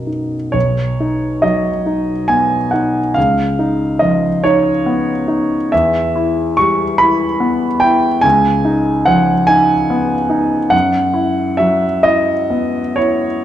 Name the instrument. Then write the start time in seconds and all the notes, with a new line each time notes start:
grand piano
Already playing: B1 F#2 B3 F#4 A#4
0.07 D#4
0.52 B1 C#5
1.00 D#4
1.42 F#3 D#5
1.86 D#4
2.28 B3 G#5
2.71 D#4 F#5
3.14 C#2 F5
3.59 D#4
3.99 F3 D#5
4.44 D#4 C#5
4.86 B3
5.28 D#4
5.72 E2 E5
6.15 E4
6.57 G3 C#6
6.98 E4 B5
7.40 B3
7.80 E4 G5
8.21 C#2 G#5
8.65 D#4
9.06 F3 F#5
9.47 D#4 G#5
9.90 B3
10.30 D#4
10.70 F#2 F#5
11.14 E4
11.57 F#3 E5
12.03 E4 D#5
12.50 B3
12.96 E4 C#5